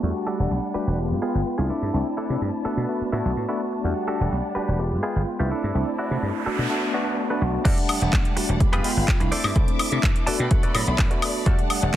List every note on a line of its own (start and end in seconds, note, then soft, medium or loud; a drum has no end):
0.03 0.11 E2 medium
0.03 0.36 G3 medium
0.03 0.97 G3 medium
0.03 0.36 A3 medium
0.03 0.36 D4 medium
0.03 0.37 F#4 loud
0.03 0.97 D5 medium
0.03 0.98 F#5 medium
0.03 0.97 A5 medium
0.27 0.51 D4 medium
0.27 0.51 F#4 medium
0.27 0.51 G4 medium
0.27 0.51 A4 loud
0.39 0.47 E1 medium
0.39 0.72 G3 medium
0.39 0.72 A3 medium
0.39 0.72 D4 medium
0.39 0.72 F#5 medium
0.51 0.58 B1 medium
0.74 0.96 G3 medium
0.74 0.96 A3 medium
0.74 0.96 D4 medium
0.74 0.98 D4 medium
0.74 0.96 F#4 medium
0.74 0.98 F#4 medium
0.74 0.98 G4 medium
0.74 0.99 B4 medium
0.74 muted slap bass stroke soft
0.87 1.12 E1 medium
0.98 1.19 G#3 medium
0.98 1.19 B3 medium
0.98 1.69 F4 medium
0.98 1.20 F4 medium
0.98 1.20 G4 medium
0.98 1.69 B4 medium
1.11 1.18 G2 medium
1.22 1.55 G#3 medium
1.22 1.55 B3 medium
1.22 1.40 B3 loud
1.22 1.40 F4 medium
1.22 1.56 F4 medium
1.22 1.40 G#4 loud
1.22 1.56 G5 medium
1.35 1.42 G1 medium
1.58 1.69 C2 medium
1.58 1.91 A3 medium
1.58 1.70 B3 medium
1.58 1.91 C4 medium
1.58 1.91 D4 medium
1.58 1.91 E4 medium
1.58 1.70 F4 medium
1.58 1.69 G#4 loud
1.69 2.08 D4 medium
1.69 2.08 E4 medium
1.69 2.64 E4 medium
1.69 2.08 A4 medium
1.69 2.64 D5 medium
1.69 3.82 A5 medium
1.69 muted slap bass stroke soft
1.82 1.89 G2 loud
1.93 2.01 C2 loud
1.93 2.27 A3 medium
1.93 2.27 C4 medium
1.93 2.27 D4 medium
1.93 2.27 E4 loud
2.17 2.41 D4 loud
2.17 2.41 E4 loud
2.17 2.41 A4 loud
2.29 2.37 C3 medium
2.29 2.62 A3 medium
2.29 2.62 C4 medium
2.29 2.62 D4 medium
2.29 2.63 E4 medium
2.41 2.49 G2 medium
2.65 2.86 A3 medium
2.65 2.86 B3 medium
2.65 3.03 B3 medium
2.65 3.83 D4 medium
2.65 2.86 D4 medium
2.65 3.04 D4 medium
2.65 2.86 F#4 medium
2.65 3.04 A4 loud
2.65 3.83 B4 medium
2.65 muted slap bass stroke soft
2.77 2.84 B2 medium
2.88 3.10 A3 medium
2.88 3.10 B3 medium
2.88 3.10 D4 medium
2.88 3.10 F#4 medium
3.01 muted slap bass stroke soft
3.12 3.20 A2 medium
3.12 3.46 A3 medium
3.12 3.31 B3 loud
3.12 3.46 B3 medium
3.12 3.46 D4 medium
3.12 3.31 D4 medium
3.12 3.31 E4 loud
3.12 3.46 F#4 medium
3.25 3.32 B1 medium
3.37 3.44 A2 loud
3.48 3.81 A3 medium
3.48 3.81 B3 medium
3.48 3.60 B3 medium
3.48 3.81 D4 medium
3.48 3.60 D4 medium
3.48 3.60 E4 loud
3.48 3.82 F#4 medium
3.72 muted clean electric guitar stroke soft
3.84 3.92 E2 medium
3.84 4.17 G3 medium
3.84 4.79 G3 medium
3.84 4.17 A3 medium
3.84 4.18 D4 medium
3.84 4.18 F#4 loud
3.84 4.79 D5 medium
3.84 4.79 F#5 medium
3.84 4.79 A5 medium
4.08 4.32 D4 medium
4.08 4.32 F#4 loud
4.08 4.32 G4 loud
4.08 4.32 A4 loud
4.20 4.28 E1 medium
4.20 4.53 G3 medium
4.20 4.53 A3 medium
4.20 4.53 D4 medium
4.20 4.53 F#5 medium
4.32 4.40 B1 medium
4.55 4.76 G3 medium
4.55 4.77 A3 medium
4.55 4.77 D4 medium
4.55 4.79 D4 medium
4.55 4.77 F#4 medium
4.55 4.79 F#4 medium
4.55 4.79 G4 medium
4.55 4.79 B4 medium
4.55 muted slap bass stroke soft
4.68 4.93 E1 medium
4.79 5.00 G#3 medium
4.79 5.00 B3 medium
4.79 5.50 F4 medium
4.79 5.00 F4 medium
4.79 5.01 G4 medium
4.79 5.50 B4 medium
4.92 4.99 G2 medium
5.03 5.36 G#3 medium
5.03 5.36 B3 medium
5.03 5.21 B3 loud
5.03 5.36 F4 medium
5.03 5.21 F4 medium
5.03 5.21 G#4 loud
5.03 5.37 G5 medium
5.16 5.23 G1 medium
5.39 5.51 C2 medium
5.39 5.72 A3 medium
5.39 5.51 B3 medium
5.39 5.72 C4 medium
5.39 5.72 D4 medium
5.39 5.72 E4 loud
5.39 5.51 F4 medium
5.39 5.51 G4 medium
5.51 5.89 D4 medium
5.51 5.89 E4 medium
5.51 6.45 E4 medium
5.51 5.89 A4 medium
5.51 6.45 D5 medium
5.51 6.45 A5 medium
5.51 muted slap bass stroke soft
5.64 5.71 G2 loud
5.74 5.82 C2 loud
5.74 6.08 A3 medium
5.74 6.08 C4 medium
5.74 6.08 D4 medium
5.74 6.08 E4 loud
5.74 noise sweep medium
5.98 6.22 D4 medium
5.98 6.22 E4 loud
5.98 6.22 F#4 loud
6.10 6.18 C3 medium
6.10 6.43 A3 medium
6.10 6.43 C4 medium
6.10 6.43 D4 medium
6.10 6.43 E4 medium
6.22 6.30 G2 medium
6.45 6.67 A3 medium
6.45 6.67 B3 medium
6.45 6.85 B3 medium
6.45 6.67 D4 medium
6.45 7.64 D4 medium
6.45 6.85 D4 medium
6.45 6.67 F#4 medium
6.45 6.85 A4 loud
6.45 7.64 B4 medium
6.45 7.64 A5 medium
6.45 muted slap bass stroke soft
6.58 6.66 B2 medium
6.69 6.91 A3 medium
6.69 6.91 B3 medium
6.69 6.91 D4 medium
6.69 6.91 F#4 loud
6.93 7.27 A3 medium
6.93 7.27 B3 medium
6.93 7.12 B3 medium
6.93 7.27 D4 medium
6.93 7.12 D4 loud
6.93 7.27 F#4 medium
6.93 7.12 F#4 loud
7.29 7.62 A3 medium
7.29 7.62 B3 medium
7.29 7.42 B3 medium
7.29 7.62 D4 medium
7.29 7.42 D4 medium
7.29 7.63 F#4 medium
7.29 7.42 B4 loud
7.41 7.56 B1 loud
7.54 muted clean electric guitar stroke soft
7.65 7.73 E2 loud
7.65 7.98 G3 medium
7.65 8.60 G3 medium
7.65 7.98 A3 medium
7.65 7.78 D4 loud
7.65 7.99 D4 medium
7.65 7.78 F#4 loud
7.65 7.78 G4 medium
7.65 7.78 A4 loud
7.65 8.60 D5 medium
7.65 8.60 F#5 medium
7.65 7.99 F#5 loud
7.65 8.60 A5 medium
7.65 kick loud
7.65 closed hi-hat medium
7.65 crash loud
7.78 closed hi-hat medium
7.89 muted clean electric guitar stroke soft
7.89 open hi-hat loud
7.89 high woodblock medium
8.01 8.09 E1 medium
8.01 8.34 G3 medium
8.01 8.34 A3 medium
8.01 8.34 D4 medium
8.01 8.34 F#5 medium
8.01 closed hi-hat soft
8.13 8.20 B1 medium
8.13 kick loud
8.13 clap loud
8.13 closed hi-hat medium
8.25 closed hi-hat medium
8.36 8.58 G3 medium
8.36 8.58 A3 medium
8.36 8.58 D4 medium
8.36 8.58 F#4 medium
8.36 muted clean electric guitar stroke medium
8.36 muted slap bass stroke soft
8.36 open hi-hat loud
8.49 8.74 E1 medium
8.49 muted clean electric guitar stroke soft
8.49 closed hi-hat soft
8.60 8.81 G#3 medium
8.60 9.31 G#3 medium
8.60 8.82 B3 medium
8.60 8.82 F4 medium
8.60 8.82 G4 medium
8.60 9.31 F5 medium
8.60 9.31 B5 medium
8.60 kick loud
8.60 closed hi-hat medium
8.73 8.80 G2 medium
8.73 8.90 F4 loud
8.73 8.90 G4 loud
8.73 8.90 G#4 loud
8.73 8.91 B4 loud
8.73 closed hi-hat medium
8.73 high woodblock medium
8.84 9.17 G#3 medium
8.84 9.18 B3 medium
8.84 9.18 F4 medium
8.84 9.18 G5 loud
8.84 open hi-hat loud
8.97 9.04 G1 medium
9.08 muted clean electric guitar stroke medium
9.08 kick loud
9.08 clap loud
9.08 closed hi-hat medium
9.20 9.31 C2 medium
9.20 9.53 A3 medium
9.20 9.53 C4 medium
9.20 9.53 D4 medium
9.20 9.53 E4 loud
9.20 muted clean electric guitar stroke loud
9.20 closed hi-hat medium
9.32 9.70 E4 medium
9.32 11.44 A4 medium
9.32 9.70 A4 medium
9.32 9.70 C5 medium
9.32 9.70 D5 loud
9.32 10.26 E5 medium
9.32 10.26 D6 medium
9.32 muted slap bass stroke soft
9.32 open hi-hat loud
9.44 9.51 G2 loud
9.44 high woodblock medium
9.55 9.63 C2 loud
9.55 9.89 A3 medium
9.55 9.89 C4 medium
9.55 9.89 D4 medium
9.55 9.89 E4 loud
9.55 kick loud
9.55 closed hi-hat medium
9.68 closed hi-hat medium
9.79 muted clean electric guitar stroke soft
9.79 open hi-hat loud
9.79 high woodblock medium
9.91 9.99 C3 medium
9.91 10.24 A3 medium
9.91 10.24 C4 medium
9.91 10.24 D4 medium
9.91 10.25 E4 medium
10.03 10.11 G2 medium
10.03 kick loud
10.03 clap loud
10.03 closed hi-hat medium
10.16 closed hi-hat medium
10.26 10.48 A3 medium
10.26 10.48 B3 medium
10.26 10.48 D4 medium
10.26 10.48 F#4 medium
10.26 10.56 F#4 medium
10.26 10.56 A4 medium
10.26 10.56 B4 medium
10.26 10.56 D5 loud
10.26 11.96 D5 medium
10.26 10.39 A5 medium
10.26 11.45 B5 medium
10.26 muted slap bass stroke soft
10.26 open hi-hat loud
10.39 10.47 B2 medium
10.39 10.50 G5 medium
10.39 closed hi-hat soft
10.50 10.72 A3 medium
10.50 10.72 B3 medium
10.50 10.72 D4 medium
10.50 10.72 F#4 loud
10.50 10.73 F#5 medium
10.50 kick loud
10.50 closed hi-hat medium
10.63 10.81 F#4 loud
10.63 10.81 A4 medium
10.63 10.75 B4 loud
10.63 10.81 D5 loud
10.63 muted slap bass stroke soft
10.63 closed hi-hat medium
10.74 10.82 A2 loud
10.74 11.08 F#3 loud
10.74 11.08 A3 medium
10.74 11.08 B3 medium
10.74 11.08 D4 medium
10.74 10.97 E5 medium
10.74 open hi-hat loud
10.74 high woodblock medium
10.87 10.94 B1 loud
10.98 11.06 A2 loud
10.98 11.01 D5 medium
10.98 muted clean electric guitar stroke loud
10.98 kick loud
10.98 clap loud
10.98 closed hi-hat medium
11.10 11.43 A3 medium
11.10 11.43 B3 medium
11.10 11.43 D4 medium
11.10 11.43 F#4 loud
11.10 muted clean electric guitar stroke medium
11.10 closed hi-hat medium
11.22 muted clean electric guitar stroke soft
11.22 open hi-hat loud
11.22 high woodblock medium
11.46 11.54 E2 loud
11.46 11.79 G3 loud
11.46 11.96 G3 medium
11.46 11.79 A3 medium
11.46 11.79 D4 medium
11.46 11.59 F#4 loud
11.46 11.59 G4 loud
11.46 11.59 A4 medium
11.46 11.59 D5 loud
11.46 11.96 F#5 medium
11.46 11.80 F#5 loud
11.46 11.96 A5 medium
11.46 kick loud
11.46 closed hi-hat medium
11.59 closed hi-hat soft
11.70 muted clean electric guitar stroke soft
11.70 open hi-hat loud
11.70 high woodblock medium
11.82 11.89 E1 medium
11.82 11.96 G3 medium
11.82 11.96 A3 medium
11.82 11.96 D4 medium
11.82 11.96 F#5 medium